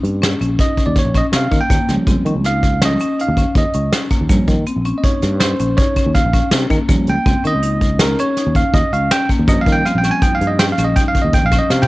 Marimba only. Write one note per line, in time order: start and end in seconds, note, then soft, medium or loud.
0.00 0.16 D#4 medium
0.22 0.38 C#4 medium
0.41 0.57 C#4 medium
0.59 0.75 D#4 medium
0.78 1.09 C#4 medium
1.15 1.31 C#4 medium
1.33 1.49 C#4 medium
1.52 1.67 A#3 medium
1.70 2.01 A#3 medium
2.07 2.23 C4 medium
2.26 2.42 C#4 medium
2.45 2.76 D#4 medium
2.82 2.98 C#4 medium
3.01 3.16 C#4 medium
3.19 3.35 D#4 medium
3.38 3.69 C#4 medium
3.75 3.90 C#4 medium
3.93 4.09 C#4 medium
4.11 4.27 A#3 medium
4.30 4.61 A#3 medium
4.67 4.82 C4 medium
4.86 5.01 C#4 medium
5.04 5.35 D#4 medium
5.41 5.56 C#4 medium
5.60 5.75 C#4 medium
5.78 5.93 D#4 medium
5.97 6.28 C#4 medium
6.34 6.49 C#4 medium
6.53 6.68 C#4 medium
6.71 6.86 A#3 medium
6.89 7.20 A#3 medium
7.26 7.42 C4 medium
7.44 7.60 C#4 medium
7.63 7.94 D#4 medium
8.00 8.16 C#4 medium
8.19 8.34 C#4 medium
8.38 8.53 D#4 medium
8.55 8.87 C#4 medium
8.93 9.09 C#4 medium
9.11 9.27 C#4 medium
9.30 9.45 A#3 medium
9.49 9.80 A#3 medium
9.86 10.01 C4 medium
10.05 10.20 C#4 medium
10.23 10.54 D#4 medium
10.60 10.76 C#4 medium
10.79 10.94 C#4 medium
10.98 11.13 D#4 medium
11.16 11.47 C#4 medium
11.52 11.68 C#4 medium
11.70 11.86 C#4 medium